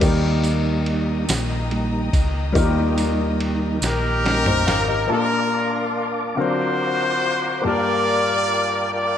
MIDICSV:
0, 0, Header, 1, 7, 480
1, 0, Start_track
1, 0, Tempo, 846262
1, 12, Time_signature, 6, 3, 24, 8
1, 5206, End_track
2, 0, Start_track
2, 0, Title_t, "String section"
2, 0, Program_c, 0, 48
2, 13, Note_on_c, 0, 75, 74
2, 14, Note_on_c, 0, 79, 67
2, 14, Note_on_c, 0, 82, 68
2, 15, Note_on_c, 0, 87, 76
2, 2871, Note_off_c, 0, 75, 0
2, 2871, Note_off_c, 0, 79, 0
2, 2871, Note_off_c, 0, 82, 0
2, 2872, Note_off_c, 0, 87, 0
2, 5206, End_track
3, 0, Start_track
3, 0, Title_t, "Horn section"
3, 0, Program_c, 1, 61
3, 2183, Note_on_c, 1, 70, 127
3, 2184, Note_on_c, 1, 67, 99
3, 2186, Note_on_c, 1, 63, 84
3, 2876, Note_off_c, 1, 67, 0
3, 2876, Note_off_c, 1, 70, 0
3, 2877, Note_off_c, 1, 63, 0
3, 2901, Note_on_c, 1, 70, 111
3, 2905, Note_on_c, 1, 65, 82
3, 2906, Note_on_c, 1, 62, 78
3, 3355, Note_off_c, 1, 70, 0
3, 3597, Note_off_c, 1, 62, 0
3, 3597, Note_off_c, 1, 65, 0
3, 3627, Note_on_c, 1, 65, 78
3, 3628, Note_on_c, 1, 72, 118
3, 3629, Note_on_c, 1, 66, 82
3, 4318, Note_off_c, 1, 65, 0
3, 4319, Note_off_c, 1, 66, 0
3, 4319, Note_off_c, 1, 72, 0
3, 4346, Note_on_c, 1, 74, 123
3, 4348, Note_on_c, 1, 65, 84
3, 4348, Note_on_c, 1, 70, 93
3, 5039, Note_off_c, 1, 65, 0
3, 5039, Note_off_c, 1, 70, 0
3, 5061, Note_off_c, 1, 74, 0
3, 5065, Note_on_c, 1, 65, 76
3, 5066, Note_on_c, 1, 70, 73
3, 5068, Note_on_c, 1, 74, 110
3, 5206, Note_off_c, 1, 65, 0
3, 5206, Note_off_c, 1, 70, 0
3, 5206, Note_off_c, 1, 74, 0
3, 5206, End_track
4, 0, Start_track
4, 0, Title_t, "Grand piano"
4, 0, Program_c, 2, 0
4, 0, Control_c, 2, 64, 127
4, 0, Note_on_c, 2, 55, 76
4, 4, Note_on_c, 2, 58, 66
4, 10, Note_on_c, 2, 51, 73
4, 12, Note_on_c, 2, 63, 70
4, 20, Control_c, 2, 64, 0
4, 21, Note_on_c, 2, 67, 73
4, 28, Note_on_c, 2, 70, 82
4, 121, Control_c, 2, 64, 127
4, 708, Note_off_c, 2, 51, 0
4, 1420, Note_off_c, 2, 55, 0
4, 1426, Note_off_c, 2, 58, 0
4, 1429, Note_off_c, 2, 63, 0
4, 1432, Note_on_c, 2, 55, 85
4, 1434, Note_off_c, 2, 67, 0
4, 1437, Note_off_c, 2, 70, 0
4, 1440, Note_on_c, 2, 58, 75
4, 1447, Note_on_c, 2, 51, 84
4, 1447, Note_on_c, 2, 63, 79
4, 1456, Note_on_c, 2, 65, 60
4, 1462, Note_on_c, 2, 70, 83
4, 1491, Note_off_c, 2, 65, 0
4, 1491, Note_on_c, 2, 67, 75
4, 2147, Note_off_c, 2, 51, 0
4, 2391, Note_off_c, 2, 63, 0
4, 2398, Note_off_c, 2, 70, 0
4, 2409, Note_on_c, 2, 70, 69
4, 2413, Note_off_c, 2, 67, 0
4, 2413, Note_on_c, 2, 61, 56
4, 2525, Note_off_c, 2, 70, 0
4, 2527, Note_off_c, 2, 61, 0
4, 2530, Note_on_c, 2, 72, 69
4, 2532, Note_on_c, 2, 63, 59
4, 2645, Note_off_c, 2, 72, 0
4, 2646, Note_off_c, 2, 63, 0
4, 2648, Note_on_c, 2, 77, 66
4, 2764, Note_off_c, 2, 77, 0
4, 2767, Note_on_c, 2, 75, 60
4, 2770, Note_on_c, 2, 67, 53
4, 2860, Note_off_c, 2, 55, 0
4, 2864, Note_off_c, 2, 58, 0
4, 2879, Note_on_c, 2, 58, 73
4, 2883, Note_on_c, 2, 62, 63
4, 2888, Note_on_c, 2, 46, 64
4, 2888, Note_on_c, 2, 65, 59
4, 2891, Note_on_c, 2, 81, 59
4, 2896, Note_on_c, 2, 70, 70
4, 2899, Control_c, 2, 64, 0
4, 2986, Control_c, 2, 64, 127
4, 2998, Note_off_c, 2, 75, 0
4, 3000, Note_off_c, 2, 67, 0
4, 3588, Note_off_c, 2, 46, 0
4, 3599, Note_off_c, 2, 62, 0
4, 3604, Note_on_c, 2, 60, 62
4, 3606, Note_off_c, 2, 58, 0
4, 3608, Note_on_c, 2, 62, 59
4, 3611, Note_off_c, 2, 65, 0
4, 3611, Note_off_c, 2, 70, 0
4, 3612, Note_on_c, 2, 77, 60
4, 3613, Note_off_c, 2, 81, 0
4, 3613, Note_on_c, 2, 50, 56
4, 3616, Note_on_c, 2, 54, 55
4, 3619, Note_on_c, 2, 70, 70
4, 3621, Control_c, 2, 64, 0
4, 3729, Control_c, 2, 64, 127
4, 4311, Note_off_c, 2, 50, 0
4, 4320, Note_off_c, 2, 62, 0
4, 4320, Note_on_c, 2, 58, 66
4, 4329, Note_off_c, 2, 60, 0
4, 4329, Note_on_c, 2, 62, 70
4, 4334, Note_off_c, 2, 77, 0
4, 4336, Note_off_c, 2, 54, 0
4, 4336, Note_on_c, 2, 43, 64
4, 4337, Note_off_c, 2, 70, 0
4, 4338, Note_on_c, 2, 65, 64
4, 4340, Control_c, 2, 64, 0
4, 4345, Note_on_c, 2, 67, 63
4, 4354, Note_on_c, 2, 70, 74
4, 4454, Control_c, 2, 64, 127
4, 5033, Note_off_c, 2, 43, 0
4, 5206, Note_off_c, 2, 58, 0
4, 5206, Note_off_c, 2, 62, 0
4, 5206, Note_off_c, 2, 65, 0
4, 5206, Note_off_c, 2, 67, 0
4, 5206, Note_off_c, 2, 70, 0
4, 5206, End_track
5, 0, Start_track
5, 0, Title_t, "Tonewheel organ"
5, 0, Program_c, 3, 16
5, 12, Note_on_c, 3, 55, 54
5, 14, Note_on_c, 3, 58, 58
5, 18, Note_on_c, 3, 63, 63
5, 709, Note_off_c, 3, 55, 0
5, 710, Note_off_c, 3, 58, 0
5, 712, Note_off_c, 3, 63, 0
5, 973, Note_on_c, 3, 55, 56
5, 976, Note_on_c, 3, 63, 61
5, 977, Note_on_c, 3, 58, 50
5, 1190, Note_off_c, 3, 55, 0
5, 1191, Note_off_c, 3, 63, 0
5, 1192, Note_off_c, 3, 58, 0
5, 1449, Note_on_c, 3, 55, 59
5, 1451, Note_on_c, 3, 58, 57
5, 1455, Note_on_c, 3, 63, 68
5, 2148, Note_off_c, 3, 55, 0
5, 2149, Note_off_c, 3, 58, 0
5, 2151, Note_off_c, 3, 63, 0
5, 2407, Note_on_c, 3, 55, 53
5, 2411, Note_on_c, 3, 58, 48
5, 2413, Note_on_c, 3, 63, 55
5, 2627, Note_off_c, 3, 55, 0
5, 2629, Note_off_c, 3, 58, 0
5, 2630, Note_off_c, 3, 63, 0
5, 2886, Note_on_c, 3, 86, 86
5, 2887, Note_on_c, 3, 77, 73
5, 2887, Note_on_c, 3, 81, 67
5, 2889, Note_on_c, 3, 70, 78
5, 3603, Note_off_c, 3, 77, 0
5, 3603, Note_off_c, 3, 81, 0
5, 3604, Note_off_c, 3, 70, 0
5, 3613, Note_on_c, 3, 82, 65
5, 3614, Note_on_c, 3, 72, 67
5, 3614, Note_on_c, 3, 77, 61
5, 4326, Note_off_c, 3, 77, 0
5, 4327, Note_off_c, 3, 72, 0
5, 4327, Note_off_c, 3, 82, 0
5, 4331, Note_on_c, 3, 79, 68
5, 4332, Note_on_c, 3, 77, 69
5, 4335, Note_on_c, 3, 70, 77
5, 5206, Note_off_c, 3, 70, 0
5, 5206, Note_off_c, 3, 77, 0
5, 5206, Note_off_c, 3, 79, 0
5, 5206, Note_off_c, 3, 86, 0
5, 5206, End_track
6, 0, Start_track
6, 0, Title_t, "Fingered electric bass"
6, 0, Program_c, 4, 33
6, 10, Note_on_c, 4, 39, 98
6, 708, Note_off_c, 4, 39, 0
6, 731, Note_on_c, 4, 34, 106
6, 1189, Note_off_c, 4, 34, 0
6, 1210, Note_on_c, 4, 37, 91
6, 1432, Note_off_c, 4, 37, 0
6, 1450, Note_on_c, 4, 39, 101
6, 2149, Note_off_c, 4, 39, 0
6, 2166, Note_on_c, 4, 34, 109
6, 2627, Note_off_c, 4, 34, 0
6, 2650, Note_on_c, 4, 32, 88
6, 2872, Note_off_c, 4, 32, 0
6, 5206, End_track
7, 0, Start_track
7, 0, Title_t, "Drums"
7, 8, Note_on_c, 9, 49, 90
7, 8, Note_on_c, 9, 51, 68
7, 11, Note_on_c, 9, 36, 108
7, 14, Note_on_c, 9, 54, 55
7, 64, Note_off_c, 9, 49, 0
7, 65, Note_off_c, 9, 51, 0
7, 68, Note_off_c, 9, 36, 0
7, 71, Note_off_c, 9, 54, 0
7, 247, Note_on_c, 9, 51, 43
7, 251, Note_on_c, 9, 54, 67
7, 304, Note_off_c, 9, 51, 0
7, 307, Note_off_c, 9, 54, 0
7, 490, Note_on_c, 9, 51, 51
7, 547, Note_off_c, 9, 51, 0
7, 730, Note_on_c, 9, 54, 93
7, 732, Note_on_c, 9, 51, 68
7, 737, Note_on_c, 9, 38, 119
7, 786, Note_off_c, 9, 54, 0
7, 789, Note_off_c, 9, 51, 0
7, 794, Note_off_c, 9, 38, 0
7, 972, Note_on_c, 9, 51, 38
7, 1028, Note_off_c, 9, 51, 0
7, 1210, Note_on_c, 9, 36, 96
7, 1211, Note_on_c, 9, 54, 50
7, 1212, Note_on_c, 9, 51, 64
7, 1267, Note_off_c, 9, 36, 0
7, 1267, Note_off_c, 9, 54, 0
7, 1269, Note_off_c, 9, 51, 0
7, 1448, Note_on_c, 9, 51, 66
7, 1449, Note_on_c, 9, 36, 104
7, 1452, Note_on_c, 9, 54, 57
7, 1505, Note_off_c, 9, 51, 0
7, 1506, Note_off_c, 9, 36, 0
7, 1509, Note_off_c, 9, 54, 0
7, 1688, Note_on_c, 9, 54, 62
7, 1689, Note_on_c, 9, 51, 51
7, 1745, Note_off_c, 9, 51, 0
7, 1745, Note_off_c, 9, 54, 0
7, 1931, Note_on_c, 9, 51, 59
7, 1988, Note_off_c, 9, 51, 0
7, 2166, Note_on_c, 9, 54, 101
7, 2173, Note_on_c, 9, 51, 71
7, 2177, Note_on_c, 9, 38, 65
7, 2223, Note_off_c, 9, 54, 0
7, 2230, Note_off_c, 9, 51, 0
7, 2234, Note_off_c, 9, 38, 0
7, 2414, Note_on_c, 9, 51, 41
7, 2418, Note_on_c, 9, 38, 78
7, 2471, Note_off_c, 9, 51, 0
7, 2475, Note_off_c, 9, 38, 0
7, 2531, Note_on_c, 9, 45, 91
7, 2588, Note_off_c, 9, 45, 0
7, 2653, Note_on_c, 9, 51, 62
7, 2653, Note_on_c, 9, 54, 47
7, 2655, Note_on_c, 9, 38, 95
7, 2710, Note_off_c, 9, 51, 0
7, 2710, Note_off_c, 9, 54, 0
7, 2712, Note_off_c, 9, 38, 0
7, 5206, End_track
0, 0, End_of_file